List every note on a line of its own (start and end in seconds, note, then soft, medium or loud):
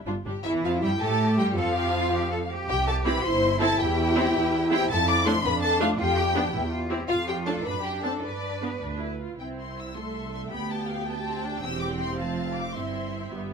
0.06 0.14 G1 medium
0.06 0.14 G2 medium
0.06 0.14 G3 medium
0.06 0.14 D4 medium
0.06 0.14 F4 medium
0.25 0.33 G1 medium
0.25 0.34 G2 medium
0.25 0.33 G3 medium
0.25 0.33 D4 medium
0.25 0.44 G4 medium
0.44 0.52 E2 loud
0.44 0.62 E3 loud
0.44 0.52 E4 medium
0.44 0.97 E4 medium
0.44 0.52 E5 loud
0.63 0.82 F2 medium
0.63 0.82 F3 medium
0.63 0.82 F4 medium
0.63 0.72 F5 medium
0.82 0.90 G2 medium
0.82 0.90 G3 medium
0.82 0.90 G4 medium
0.82 1.01 G5 medium
1.00 1.38 A2 medium
1.00 1.38 A3 loud
1.00 1.57 G4 medium
1.00 1.37 A4 medium
1.00 1.39 A5 loud
1.38 1.57 G2 medium
1.38 1.57 G3 medium
1.38 1.56 G4 medium
1.38 1.46 G5 loud
1.56 2.50 F2 loud
1.56 2.50 F3 medium
1.56 2.50 F4 medium
1.56 1.75 A4 medium
1.56 2.48 F5 loud
1.76 1.94 G4 medium
1.94 2.12 F4 medium
2.13 2.31 G4 medium
2.31 2.39 A4 medium
2.50 3.22 G4 medium
2.68 3.15 C2 loud
2.68 2.76 G4 loud
2.68 2.86 G5 loud
2.87 2.94 A4 medium
2.87 2.95 A5 loud
3.04 3.14 C4 medium
3.04 3.14 E4 medium
3.04 3.23 B4 loud
3.04 3.24 B5 loud
3.23 3.70 G1 loud
3.23 5.44 E4 loud
3.23 3.59 C5 loud
3.23 3.61 C6 loud
3.60 3.69 C4 medium
3.60 3.69 E4 medium
3.60 3.78 A4 medium
3.60 3.79 A5 loud
3.79 4.25 E2 loud
3.79 4.70 G4 loud
3.79 4.70 G5 loud
4.16 4.24 C4 medium
4.16 4.24 E4 medium
4.34 4.80 E2 loud
4.71 4.79 C4 medium
4.71 4.79 E4 medium
4.71 4.89 G4 loud
4.71 4.89 G5 loud
4.89 5.34 F2 loud
4.89 4.97 A4 loud
4.89 5.07 A5 loud
5.08 5.26 D5 loud
5.08 5.26 D6 loud
5.26 5.34 A3 medium
5.26 5.34 D4 medium
5.26 5.34 C5 medium
5.26 5.44 C6 loud
5.43 5.89 F2 loud
5.43 5.98 D4 medium
5.43 5.52 B4 loud
5.43 5.62 B5 loud
5.62 5.80 A4 loud
5.62 5.80 A5 loud
5.80 5.89 A3 medium
5.80 5.88 D4 medium
5.80 5.89 F4 medium
5.80 5.88 F5 loud
5.98 6.44 F2 loud
5.98 6.17 F4 loud
5.98 6.70 G4 loud
5.98 6.70 G5 loud
6.16 6.35 G4 medium
6.35 6.44 B3 medium
6.35 6.42 D4 medium
6.35 6.43 D4 medium
6.53 6.99 E2 medium
6.53 6.71 E4 medium
6.71 6.90 F4 medium
6.90 6.99 C4 medium
6.90 6.99 E4 medium
6.90 7.09 G4 medium
7.08 7.56 F2 medium
7.08 7.16 F4 loud
7.08 7.64 F4 medium
7.08 7.26 F5 loud
7.28 7.35 G4 medium
7.28 7.36 G5 loud
7.46 7.55 A3 medium
7.46 7.55 D4 medium
7.46 7.65 A4 medium
7.46 7.55 A5 medium
7.65 8.13 F#2 medium
7.65 8.23 D4 medium
7.65 7.85 B4 medium
7.65 7.84 B5 medium
7.83 8.03 G4 medium
7.83 8.04 G5 medium
8.03 8.13 C4 medium
8.03 8.13 D4 medium
8.03 8.23 A4 medium
8.03 8.12 A5 medium
8.23 8.72 G2 medium
8.23 8.81 D4 medium
8.23 9.11 B4 medium
8.23 8.80 D5 medium
8.62 8.71 B3 medium
8.62 8.71 D4 medium
8.81 9.30 D2 medium
8.81 8.99 D4 medium
9.00 9.20 E4 medium
9.20 9.39 F4 medium
9.39 10.48 C2 soft
9.39 9.92 C4 soft
9.39 9.92 E4 soft
9.39 9.48 G5 medium
9.59 9.77 C6 medium
9.79 9.97 E6 medium
9.95 10.52 A3 soft
9.95 10.52 A4 soft
9.95 10.48 E5 medium
9.95 10.33 C6 medium
10.34 10.41 C6 medium
10.51 11.63 D2 medium
10.51 11.05 B3 medium
10.51 11.62 G4 medium
10.51 11.07 G5 medium
10.51 10.70 B5 medium
10.70 10.89 A5 medium
10.89 11.08 F5 medium
11.07 11.14 B3 medium
11.07 11.63 G5 medium
11.07 11.63 A5 medium
11.26 11.45 C4 medium
11.44 11.63 D4 medium
11.63 12.18 E1 medium
11.63 12.18 E2 medium
11.63 12.74 C4 medium
11.63 12.18 G4 medium
11.63 12.18 G5 medium
11.63 11.82 E6 loud
11.81 11.89 D6 medium
12.01 12.19 C6 medium
12.19 12.75 F1 medium
12.19 12.75 F2 medium
12.19 12.75 F4 medium
12.19 12.75 F5 medium
12.19 12.56 A5 medium
12.57 12.76 D6 medium
12.75 13.31 G1 medium
12.75 13.31 G2 medium
12.75 13.32 C4 medium
12.75 13.32 E4 soft
12.75 13.53 E5 medium
12.75 13.32 C6 medium
13.32 13.53 G1 medium
13.32 13.53 G2 medium
13.32 13.53 B3 soft
13.32 13.53 G4 soft